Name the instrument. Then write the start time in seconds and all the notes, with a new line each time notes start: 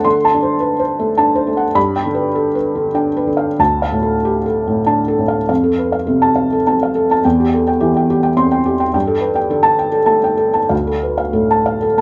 felt piano
Already playing: A3 F#5
0.05 D3 C6
0.25 A5
0.34 D4
0.43 C5
0.60 B4
0.79 C5
0.99 A3
1.18 D4 A5
1.35 C5
1.47 A3
1.57 F#5
1.75 G2 B5
1.96 G5
2.06 D3
2.15 B4
2.35 A4
2.55 B4
2.75 D3
2.95 D4 G5
3.17 B4
3.27 D3
3.37 F5
3.59 D2 A5
3.82 F5
3.92 A2
4.02 A4
4.25 G4
4.46 A4
4.67 A2
4.87 D4 A5
5.08 A4
5.19 A2
5.28 F5
5.49 F2 F5
5.64 A4
5.78 B4
5.92 F5
6.07 C3 A4
6.22 A5
6.36 F5
6.52 A4
6.67 C4 A5
6.83 F5
6.95 A4
7.11 A5
7.25 E2 G5
7.40 G4
7.54 A4
7.67 G5
7.80 E3 G4
7.97 G5
8.10 G4
8.23 G5
8.37 C4 C6
8.52 G5
8.66 G4
8.80 G5
8.94 G2 G5
9.07 A4
9.21 B4
9.35 G5
9.50 D3 A4
9.63 A5
9.79 G5
9.92 A4
10.06 A3 A5
10.24 G5
10.37 A4
10.54 A5
10.69 D2 F5
10.87 A4
11.03 B4
11.18 F5
11.33 A2 A4
11.51 A5
11.66 F5
11.82 A4
11.98 A3 A5